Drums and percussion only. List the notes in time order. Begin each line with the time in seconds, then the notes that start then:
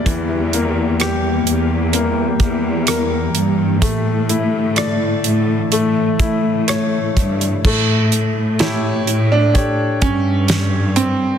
0.06 kick, closed hi-hat
0.53 closed hi-hat
1.00 cross-stick, closed hi-hat
1.47 closed hi-hat
1.93 closed hi-hat
2.40 kick, closed hi-hat
2.87 cross-stick, closed hi-hat
3.35 closed hi-hat
3.82 kick, closed hi-hat
4.29 closed hi-hat
4.76 cross-stick, closed hi-hat
5.24 closed hi-hat
5.72 closed hi-hat
6.20 kick, closed hi-hat
6.68 cross-stick, closed hi-hat
7.17 kick, closed hi-hat
7.41 closed hi-hat
7.65 kick, crash
8.12 hi-hat pedal, open hi-hat
8.59 snare, hi-hat pedal, open hi-hat
9.07 hi-hat pedal, open hi-hat
9.55 kick, hi-hat pedal, open hi-hat
10.02 kick, hi-hat pedal, open hi-hat
10.48 snare, hi-hat pedal, open hi-hat
10.96 hi-hat pedal, open hi-hat